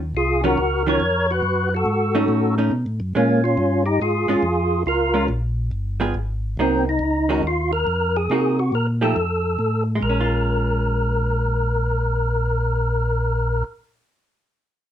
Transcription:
Already playing: tonewheel organ D#2
0.15 tonewheel organ C2 F4 G#4
0.44 hollow-body jazz guitar D#3 F#3 C#4 F4, tonewheel organ F#4 A#4
0.58 tonewheel organ C#2
0.86 hollow-body jazz guitar D#3 F#3 C#4 F4, tonewheel organ A#4 C#5
1.00 tonewheel organ F2
1.31 tonewheel organ F#4 B4
1.42 tonewheel organ F#2
1.75 tonewheel organ F#4 A4
1.86 tonewheel organ G#2
2.15 hollow-body jazz guitar A3 C#4 D#4
2.28 tonewheel organ A2
2.58 hollow-body jazz guitar A3 C#4 D#4
2.71 tonewheel organ B2
2.86 tonewheel organ A2
3.00 tonewheel organ F#2
3.15 tonewheel organ A#2 A#3 C#4, hollow-body jazz guitar G#3 C#4 F4
3.44 tonewheel organ C#4 F4
3.57 tonewheel organ G2
3.86 tonewheel organ D#4 G4
4.01 tonewheel organ G#2 F4 G#4
4.28 tonewheel organ G#2, hollow-body jazz guitar G#3 C#4 F4
4.43 tonewheel organ F2
4.86 tonewheel organ C#2 F4 A#4
5.14 hollow-body jazz guitar G#3 C#4 F4
5.28 tonewheel organ A#1
5.71 tonewheel organ G1
6.00 hollow-body jazz guitar G3 B3 F4 G#4
6.14 tonewheel organ G#1
6.57 tonewheel organ C2 C4, hollow-body jazz guitar F#3 A#3 D#4
6.89 tonewheel organ D#4
6.99 tonewheel organ C#2
7.29 hollow-body jazz guitar D#3 G#3 C#4 F#4
7.43 tonewheel organ D#2
7.47 tonewheel organ F4
7.73 tonewheel organ A#4
7.87 tonewheel organ F2
8.17 tonewheel organ G#4
8.30 tonewheel organ C3, hollow-body jazz guitar A#3 D#4 F#4
8.59 tonewheel organ F#4
8.72 tonewheel organ A#2 A#4
9.01 hollow-body jazz guitar F3 A3 D#4 G4, tonewheel organ A4
9.16 tonewheel organ F2
9.59 tonewheel organ A2
9.95 hollow-body jazz guitar G#3
10.02 tonewheel organ A#1 A#4
10.09 hollow-body jazz guitar C#4
10.21 hollow-body jazz guitar F4

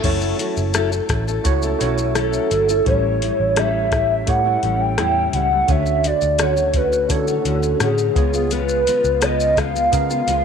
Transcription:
0.02 picked electric bass F#1, steel-string acoustic guitar F#3 C#4 E4 A4, tine electric piano A3 E4 F#4 C#5, kick, closed hi-hat, crash, shaker
0.21 shaker
0.38 steel-string acoustic guitar F#3 C#4 E4 A4, closed hi-hat, shaker
0.57 picked electric bass F#1, shaker
0.74 steel-string acoustic guitar F#3 C#4 E4 A4, cross-stick, closed hi-hat, shaker
0.92 steel-string acoustic guitar C#4 E4 A4, shaker
1.09 picked electric bass A1, kick, cross-stick, closed hi-hat, shaker
1.27 steel-string acoustic guitar C#4 E4 A4, shaker
1.44 picked electric bass C#2, tine electric piano A3 E4 F#4 C#5, kick, closed hi-hat, shaker
1.62 steel-string acoustic guitar C#4 E4 A4, shaker
1.79 picked electric bass B1, steel-string acoustic guitar F#3 C#4 E4, tine electric piano A3 E4 F#4 C#5, closed hi-hat, shaker
1.83 steel-string acoustic guitar A4
1.98 shaker
2.15 steel-string acoustic guitar F#3 C#4 E4 A4, soft synth lead A4, cross-stick, closed hi-hat, shaker
2.33 shaker
2.51 picked electric bass G1, steel-string acoustic guitar F#3 C#4 E4 A4, closed hi-hat, shaker
2.68 steel-string acoustic guitar C#4 E4 A4, shaker
2.84 picked electric bass A1, steel-string acoustic guitar A2 G3 C#4 E4, tine electric piano A3 E4 G4 C#5, soft synth lead C#5, kick, closed hi-hat
3.22 steel-string acoustic guitar A2 G3 C#4 E4, closed hi-hat
3.40 picked electric bass A1
3.55 steel-string acoustic guitar A2 G3 C#4 E4, tine electric piano A3 E4 G4 C#5, soft synth lead E5, cross-stick, closed hi-hat
3.92 steel-string acoustic guitar A2 G3 C#4 E4, kick, cross-stick, closed hi-hat
4.26 picked electric bass A2, tine electric piano A3 E4 G4 C#5, soft synth lead F#5, kick, closed hi-hat
4.44 steel-string acoustic guitar G3 C#4 E4
4.62 picked electric bass A1, steel-string acoustic guitar A2 G3 C#4 E4, closed hi-hat
4.81 soft synth lead G5
4.98 picked electric bass E2, steel-string acoustic guitar A2 G3 C#4 E4, cross-stick, closed hi-hat
5.33 picked electric bass C#2, steel-string acoustic guitar A2 G3 C#4 E4, soft synth lead F#5, closed hi-hat
5.51 steel-string acoustic guitar G3 C#4 E4
5.68 picked electric bass D2, steel-string acoustic guitar D3 A3 C#4 F#4, tine electric piano A3 D4 F#4 C#5, soft synth lead E5, kick, closed hi-hat, shaker
5.86 shaker
6.03 steel-string acoustic guitar D3 A3 F#4, soft synth lead D5, closed hi-hat, shaker
6.21 picked electric bass D2, shaker
6.38 steel-string acoustic guitar D3 A3 C#4 F#4, tine electric piano A3 D4 F#4 C#5, soft synth lead C#5, cross-stick, closed hi-hat, shaker
6.56 steel-string acoustic guitar A3 C#4 F#4, shaker
6.74 steel-string acoustic guitar D3 A3 C#4 F#4, soft synth lead B4, kick, closed hi-hat, shaker
6.93 shaker
7.09 picked electric bass D3, tine electric piano A3 D4 E4 C#5, soft synth lead A4, kick, closed hi-hat, shaker
7.17 tine electric piano F#4
7.28 steel-string acoustic guitar A3 C#4 F#4, shaker
7.45 picked electric bass D2, steel-string acoustic guitar D3 A3 C#4 F#4, closed hi-hat, shaker
7.63 shaker
7.80 picked electric bass A2, steel-string acoustic guitar D3 A3 C#4 F#4, soft synth lead G#4, cross-stick, closed hi-hat, shaker
7.98 shaker
8.15 picked electric bass C#2, steel-string acoustic guitar C#3 G#3 B3 F4, tine electric piano B3 F4 G#4 C#5, kick, closed hi-hat, shaker
8.34 steel-string acoustic guitar G#3 B3 F4, shaker
8.51 steel-string acoustic guitar C#3 G#3 B3 F4, soft synth lead B4, closed hi-hat, shaker
8.69 shaker
8.87 steel-string acoustic guitar C#3 G#3 B3 F4, closed hi-hat, shaker
9.04 picked electric bass C#2, shaker
9.20 steel-string acoustic guitar C#3 G#3 B3 F4, tine electric piano B3 F4 G#4 B4, soft synth lead D#5, cross-stick, closed hi-hat, shaker
9.40 shaker
9.56 steel-string acoustic guitar C#3 G#3 B3 F4, soft synth lead F5, kick, cross-stick, closed hi-hat, shaker
9.74 steel-string acoustic guitar G#3 B3 F4, shaker
9.92 picked electric bass C#3, tine electric piano B3 F4 G#4 A#4, kick, closed hi-hat, shaker
10.10 steel-string acoustic guitar G#3 B3 F4, shaker
10.27 picked electric bass C#2, steel-string acoustic guitar C#3 G#3 B3 F4, closed hi-hat, shaker

